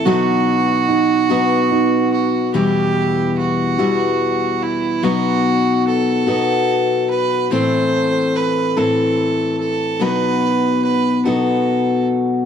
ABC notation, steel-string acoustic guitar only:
X:1
M:6/8
L:1/8
Q:3/8=48
K:Bphr
V:1 name="Steel-string acoustic guitar"
[B,,F,B,^DF]3 [B,,F,B,DF]3 | [K:Em] [E,,B,,E,G,E]3 [E,,B,,E,G,EF]3 | [B,,F,B,^DF]3 [B,,F,B,DF]3 | [A,,E,CEA]3 [A,,E,CEA]3 |
[B,,F,B,^DF]3 [B,,F,B,DF]3 |]